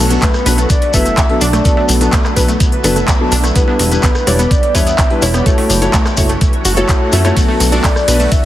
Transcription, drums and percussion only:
0.10 closed hi-hat, shekere
0.22 kick, snare, clap, closed hi-hat, shekere
0.34 cross-stick, shekere
0.46 snare, closed hi-hat, open hi-hat, shekere
0.58 closed hi-hat, shekere
0.69 kick, closed hi-hat, shekere
0.82 closed hi-hat
0.94 kick, closed hi-hat, open hi-hat, shekere
1.05 closed hi-hat, shekere
1.17 kick, snare, clap, closed hi-hat, shekere
1.30 closed hi-hat
1.41 closed hi-hat, open hi-hat, shekere
1.53 cross-stick, closed hi-hat, shekere
1.65 kick, closed hi-hat, shekere
1.77 snare
1.88 closed hi-hat, open hi-hat, shekere
2.01 closed hi-hat, shekere
2.12 kick, snare, clap, closed hi-hat, shekere
2.25 cross-stick, clap, shekere
2.37 kick, closed hi-hat, open hi-hat, shekere
2.48 closed hi-hat, shekere
2.60 kick, closed hi-hat, shekere
2.72 closed hi-hat
2.84 closed hi-hat, open hi-hat, shekere
2.96 closed hi-hat, shekere
3.08 kick, snare, clap, closed hi-hat, shekere
3.32 closed hi-hat, open hi-hat, shekere
3.44 cross-stick, closed hi-hat, shekere
3.56 kick, closed hi-hat, shekere
3.68 snare
3.79 snare, closed hi-hat, open hi-hat, shekere
3.91 closed hi-hat, shekere
4.03 kick, snare, clap, closed hi-hat, shekere
4.15 cross-stick, shekere
4.27 snare, closed hi-hat, open hi-hat, shekere
4.39 closed hi-hat, shekere
4.51 kick, closed hi-hat, shekere
4.63 closed hi-hat
4.75 kick, closed hi-hat, open hi-hat, shekere
4.87 closed hi-hat, shekere
4.98 kick, snare, clap, closed hi-hat, shekere
5.10 closed hi-hat
5.22 closed hi-hat, open hi-hat, shekere
5.34 cross-stick, closed hi-hat, shekere
5.46 kick, closed hi-hat, shekere
5.58 snare, open hi-hat
5.70 closed hi-hat, open hi-hat, shekere
5.82 closed hi-hat, shekere
5.93 kick, snare, clap, closed hi-hat, shekere
6.05 cross-stick, clap, shekere
6.17 kick, closed hi-hat, open hi-hat, shekere
6.29 closed hi-hat, shekere
6.41 kick, closed hi-hat, shekere
6.53 closed hi-hat
6.65 closed hi-hat, open hi-hat, shekere
6.76 closed hi-hat, shekere
6.89 kick, snare, clap, closed hi-hat, shekere
7.12 closed hi-hat, open hi-hat, shekere
7.25 cross-stick, closed hi-hat, shekere
7.37 kick, closed hi-hat, ride, shekere
7.49 snare
7.60 snare, closed hi-hat, open hi-hat, ride, shekere
7.72 closed hi-hat, shekere
7.84 kick, snare, clap, closed hi-hat, ride, shekere
7.96 cross-stick, shekere
8.08 snare, closed hi-hat, open hi-hat, ride, shekere
8.20 closed hi-hat, shekere
8.32 kick, closed hi-hat, ride, shekere

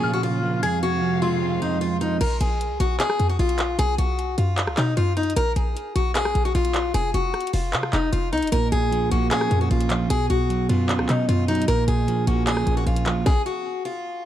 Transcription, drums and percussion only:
2.21 closed hi-hat, crash
2.41 closed hi-hat
2.61 closed hi-hat
2.80 closed hi-hat
3.00 clap, closed hi-hat
3.10 cross-stick
3.19 closed hi-hat
3.39 closed hi-hat
3.49 closed hi-hat
3.58 clap, closed hi-hat
3.79 closed hi-hat
3.98 closed hi-hat
4.19 closed hi-hat
4.38 closed hi-hat
4.58 clap, closed hi-hat
4.67 cross-stick
4.77 clap, closed hi-hat
4.97 closed hi-hat
5.17 closed hi-hat
5.23 closed hi-hat
5.30 closed hi-hat
5.36 closed hi-hat
5.56 closed hi-hat
5.77 closed hi-hat
5.96 closed hi-hat
6.16 clap, closed hi-hat
6.25 cross-stick
6.35 closed hi-hat
6.55 closed hi-hat
6.65 closed hi-hat
6.74 clap, closed hi-hat
6.94 closed hi-hat
7.14 closed hi-hat
7.34 cross-stick, closed hi-hat
7.41 closed hi-hat
7.47 closed hi-hat
7.54 open hi-hat
7.73 clap, closed hi-hat
7.83 cross-stick
7.93 clap, closed hi-hat
8.13 closed hi-hat
8.33 closed hi-hat
8.38 closed hi-hat
8.42 closed hi-hat
8.47 closed hi-hat
8.52 closed hi-hat
8.72 closed hi-hat
8.93 closed hi-hat
9.12 closed hi-hat
9.31 clap, closed hi-hat
9.41 cross-stick
9.51 closed hi-hat
9.71 closed hi-hat
9.81 closed hi-hat
9.90 clap, closed hi-hat
10.10 closed hi-hat
10.30 closed hi-hat
10.50 closed hi-hat
10.69 closed hi-hat
10.89 clap, closed hi-hat
10.99 cross-stick
11.09 clap, closed hi-hat
11.29 closed hi-hat
11.48 closed hi-hat
11.55 closed hi-hat
11.62 closed hi-hat
11.68 closed hi-hat
11.88 closed hi-hat
12.08 closed hi-hat
12.27 closed hi-hat
12.47 clap, closed hi-hat
12.57 cross-stick
12.67 closed hi-hat
12.87 closed hi-hat
12.96 closed hi-hat
13.06 clap, closed hi-hat
13.26 kick, snare

